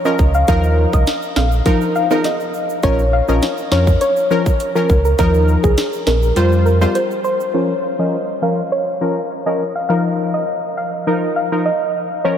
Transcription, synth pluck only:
0.05 D#5
0.35 F5
0.48 F5
0.94 D#5
1.36 F5
1.96 F5
2.25 D#5
2.83 C#5
3.13 F5
3.29 D#5
3.72 C#5
4.01 C#5
4.75 A#4
5.05 A#4
5.19 A#4
5.63 G#4
6.07 A#4
6.66 A#4
6.95 C5
7.24 C5
7.54 C#5
7.83 F5
7.99 D#5
8.43 F5
8.72 C#5
9.46 D#5
9.76 F5
9.89 F5
10.34 D#5
10.77 F5
11.36 F5
11.65 D#5
12.24 C#5

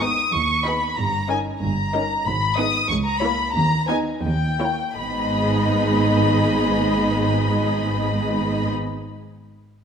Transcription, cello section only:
Already playing: G#2
0.34 D#2
0.98 G2
1.63 G2
2.26 G#2
2.90 C#2
3.56 D#2
4.24 D#2
4.98 G#2

